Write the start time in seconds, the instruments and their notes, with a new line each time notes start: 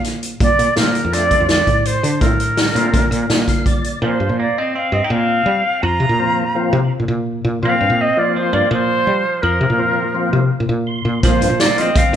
Already playing: fretless electric bass A#2
0.04 snare, closed hi-hat
0.23 closed hi-hat
0.40 fretless electric bass A#2, flute D5, kick, closed hi-hat
0.59 fretless electric bass A#2, closed hi-hat
0.75 fretless electric bass A#2, tonewheel organ A3 C4 D4 F4, flute A#4, snare, closed hi-hat
0.95 closed hi-hat
1.05 fretless electric bass F2
1.12 tonewheel organ A3 C4 D4 F4, flute D5, closed hi-hat
1.31 kick, closed hi-hat
1.40 fretless electric bass F2
1.49 flute D5, snare, closed hi-hat
1.67 fretless electric bass A2, kick, closed hi-hat
1.85 flute C5, closed hi-hat
2.03 fretless electric bass D3, closed hi-hat
2.21 fretless electric bass A2, tonewheel organ A3 C4 D4 F4, flute A#4, kick, closed hi-hat
2.40 closed hi-hat
2.57 snare, closed hi-hat
2.75 fretless electric bass A#2, tonewheel organ A3 C4 D4 F4, closed hi-hat
2.94 fretless electric bass A#2, kick, closed hi-hat
3.11 fretless electric bass A#2, closed hi-hat
3.30 fretless electric bass A#2, snare, closed hi-hat
3.48 tonewheel organ F5, kick, snare, closed hi-hat
3.66 tonewheel organ D5, kick, closed hi-hat
3.84 closed hi-hat
4.02 fretless electric bass A#2, tonewheel organ F3 A#3 C4 F4, clean electric guitar F3, flute C5
4.20 fretless electric bass G2
4.29 fretless electric bass A#2
4.39 clean electric guitar A#3, flute D5
4.57 clean electric guitar C4, flute D#5
4.75 clean electric guitar C4, flute F5
4.92 fretless electric bass G2, clean electric guitar C4, flute D#5
5.03 clean electric guitar D#4, flute G5
5.10 fretless electric bass A#2, clean electric guitar C4, flute F5
5.46 fretless electric bass G3
5.82 fretless electric bass F2, clean electric guitar F4, flute A#5
6.00 fretless electric bass C3
6.09 fretless electric bass A#2
6.19 tonewheel organ F3 A#3 C4 F4
6.55 tonewheel organ F3 A#3 C4 F4
6.73 fretless electric bass C3
7.00 fretless electric bass A#2
7.08 fretless electric bass A#2
7.44 fretless electric bass A#2
7.62 fretless electric bass A#2, tonewheel organ F3 A#3 C4 F4, clean electric guitar C4, flute F5
7.81 fretless electric bass G2
7.90 fretless electric bass A#2
8.01 clean electric guitar C4, flute D#5
8.17 tonewheel organ F3 A#3 C4 F4, clean electric guitar A#3, flute D5
8.36 clean electric guitar F3, flute C5
8.53 fretless electric bass G2, clean electric guitar A#3, flute D5
8.71 fretless electric bass A#2, clean electric guitar F3, flute C5
9.07 fretless electric bass G3
9.42 fretless electric bass F2, clean electric guitar F3, flute A#4
9.61 fretless electric bass C3
9.70 fretless electric bass A#2
9.78 tonewheel organ F3 A#3 C4 F4
10.14 tonewheel organ F3 A#3 C4 F4
10.33 fretless electric bass C3
10.60 fretless electric bass A#2
10.69 fretless electric bass A#2
10.87 tonewheel organ C6
11.05 fretless electric bass A#2
11.23 fretless electric bass A#2, tonewheel organ F3 A#3 C4 F4, clean electric guitar F3, flute C5, kick, closed hi-hat
11.41 fretless electric bass G2, closed hi-hat
11.50 fretless electric bass A#2
11.60 clean electric guitar A#3, flute D5, snare, closed hi-hat
11.78 tonewheel organ F3 A#3 C4 F4, clean electric guitar C4, flute D#5, closed hi-hat
11.96 clean electric guitar C4, flute F5, kick, closed hi-hat